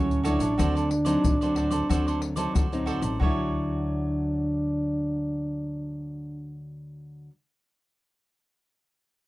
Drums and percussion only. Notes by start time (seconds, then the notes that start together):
0.11 pandeiro, shaker
0.25 pandeiro, shaker
0.40 pandeiro, shaker
0.59 pandeiro, shaker, surdo
0.77 pandeiro, shaker
0.91 pandeiro
1.06 pandeiro, shaker
1.25 pandeiro, shaker, surdo
1.42 pandeiro, shaker
1.56 pandeiro
1.71 pandeiro, shaker
1.91 pandeiro, shaker, surdo
2.08 pandeiro, shaker
2.22 pandeiro
2.37 pandeiro, shaker
2.56 pandeiro, shaker, surdo
2.73 pandeiro, shaker
2.87 pandeiro
3.03 pandeiro, shaker
3.21 surdo